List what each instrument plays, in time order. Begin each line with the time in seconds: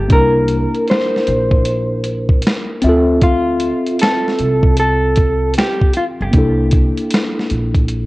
Already playing: clean electric guitar G4
0.08 upright bass C2, tine electric piano A#3 D4, kick, closed hi-hat
0.12 tine electric piano E4 A#4, clean electric guitar A#4
0.48 closed hi-hat
0.75 closed hi-hat
0.88 clean electric guitar C5, finger snap, snare, closed hi-hat
1.16 snare
1.27 upright bass A#1, closed hi-hat
1.51 kick
1.65 closed hi-hat
2.04 closed hi-hat
2.29 kick
2.42 closed hi-hat
2.47 finger snap, snare
2.82 upright bass D2, tine electric piano C4 E5, closed hi-hat
2.87 tine electric piano F4 A4
3.22 clean electric guitar F4, kick, closed hi-hat
3.60 closed hi-hat
3.86 closed hi-hat
3.99 clean electric guitar A4, finger snap, snare, closed hi-hat
4.28 snare
4.39 upright bass C2, closed hi-hat
4.63 kick
4.77 clean electric guitar A4, closed hi-hat
5.16 kick, closed hi-hat
5.54 closed hi-hat
5.58 clean electric guitar G4, finger snap, snare
5.81 kick
5.93 clean electric guitar F4, closed hi-hat
6.21 upright bass G1, clean electric guitar G4
6.31 upright bass C2, tine electric piano A#3 D4, kick, closed hi-hat
6.36 tine electric piano E4 A4
6.71 kick, closed hi-hat
6.98 closed hi-hat
7.11 finger snap, snare, closed hi-hat
7.40 snare
7.50 upright bass A#1, closed hi-hat
7.75 kick, closed hi-hat
7.88 closed hi-hat